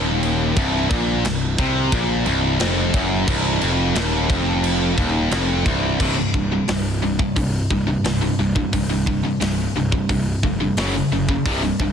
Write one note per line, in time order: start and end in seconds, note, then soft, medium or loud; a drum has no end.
0.00 0.53 D#1 medium
0.00 0.56 D#2 loud
0.23 crash medium
0.56 0.88 C1 loud
0.56 0.90 C2 medium
0.56 kick loud
0.56 crash medium
0.90 1.23 A#1 medium
0.90 1.24 A#2 medium
0.90 kick loud
0.90 crash medium
1.25 1.57 C1 medium
1.25 1.52 C2 medium
1.25 snare loud
1.25 crash medium
1.58 1.90 C2 loud
1.58 1.92 C3 loud
1.58 kick loud
1.58 crash medium
1.92 2.24 A#1 loud
1.92 2.26 A#2 loud
1.92 kick loud
1.92 crash medium
2.26 2.58 C1 loud
2.26 2.60 C2 loud
2.26 crash medium
2.60 2.93 F1 medium
2.60 2.93 F2 loud
2.60 snare loud
2.60 crash medium
2.94 3.26 F#1 medium
2.94 3.28 F#2 loud
2.94 kick loud
2.94 crash medium
3.27 3.60 C1 loud
3.27 3.61 C2 loud
3.27 kick loud
3.27 crash medium
3.61 3.94 F1 medium
3.61 3.95 F2 loud
3.61 crash medium
3.95 4.27 D#1 loud
3.95 4.29 D#2 loud
3.95 snare loud
3.95 crash medium
4.30 4.94 F1 medium
4.30 4.97 F2 medium
4.30 kick loud
4.30 crash medium
4.64 crash medium
4.98 5.30 D#1 loud
4.98 5.31 D#2 loud
4.98 kick loud
4.98 crash medium
5.31 5.63 F1 medium
5.31 5.65 F2 loud
5.31 snare loud
5.31 crash medium
5.66 5.98 C1 medium
5.66 5.99 C2 loud
5.66 kick loud
5.66 crash medium
6.00 6.24 C1 medium
6.00 6.15 C2 medium
6.00 6.16 G2 medium
6.00 6.16 C3 medium
6.00 kick loud
6.00 crash loud
6.17 6.33 C2 medium
6.17 6.33 G2 medium
6.34 6.58 C1 medium
6.34 6.52 C2 medium
6.34 6.51 G2 medium
6.34 kick medium
6.52 6.67 C2 medium
6.52 6.68 G2 medium
6.68 7.17 C1 medium
6.68 6.99 C2 medium
6.68 7.00 G2 medium
6.68 snare loud
6.68 open hi-hat medium
7.03 7.18 C2 medium
7.03 7.18 G2 medium
7.19 7.35 C2 medium
7.19 7.35 G2 medium
7.19 kick medium
7.36 7.60 C1 medium
7.36 7.67 C2 medium
7.36 7.67 G2 medium
7.36 kick loud
7.36 open hi-hat medium
7.71 7.95 C1 loud
7.71 7.86 C2 medium
7.71 7.86 G2 medium
7.71 kick medium
7.87 8.03 C2 medium
7.87 8.03 G2 medium
8.04 8.29 C1 medium
8.04 8.21 C2 medium
8.04 8.20 G2 medium
8.04 snare loud
8.04 open hi-hat medium
8.22 8.38 C2 medium
8.22 8.38 G2 medium
8.39 8.63 C1 medium
8.39 8.55 C2 medium
8.39 8.54 G2 medium
8.55 8.72 C2 medium
8.55 8.72 G2 medium
8.55 kick medium
8.73 9.21 C1 medium
8.73 8.89 C2 medium
8.73 8.88 G2 medium
8.73 kick loud
8.73 open hi-hat medium
8.90 9.06 C2 medium
8.90 9.06 G2 medium
9.07 9.23 C2 medium
9.07 9.23 G2 medium
9.07 kick medium
9.25 9.39 C2 medium
9.25 9.40 G2 medium
9.41 9.66 C1 medium
9.41 9.72 C2 medium
9.41 9.72 G2 medium
9.41 snare loud
9.41 open hi-hat medium
9.75 9.99 C1 medium
9.75 9.91 C2 medium
9.75 9.91 G2 medium
9.92 10.08 C2 medium
9.92 10.08 G2 medium
9.92 kick medium
10.09 10.34 C1 medium
10.09 10.40 C2 medium
10.09 10.40 G2 medium
10.09 kick loud
10.09 open hi-hat soft
10.43 10.68 F1 medium
10.43 10.60 C2 medium
10.43 10.59 G2 medium
10.43 kick medium
10.60 10.77 C2 medium
10.60 10.78 G2 medium
10.77 11.01 F#1 medium
10.77 10.93 F#2 medium
10.77 10.93 C#3 loud
10.77 10.93 F#3 medium
10.77 snare loud
10.77 open hi-hat medium
10.95 11.12 F#2 medium
10.95 11.11 C#3 medium
11.12 11.36 F#1 medium
11.12 11.29 F#2 medium
11.12 11.28 C#3 medium
11.29 11.45 F#2 medium
11.29 11.45 C#3 medium
11.29 kick medium
11.46 11.70 C1 loud
11.46 11.61 C2 medium
11.46 11.61 G2 medium
11.46 11.61 C3 medium
11.46 kick loud
11.46 open hi-hat medium
11.63 11.79 C2 medium
11.63 11.79 G2 medium
11.80 11.92 C1 medium
11.80 11.92 C2 medium
11.80 11.92 G2 medium
11.80 kick medium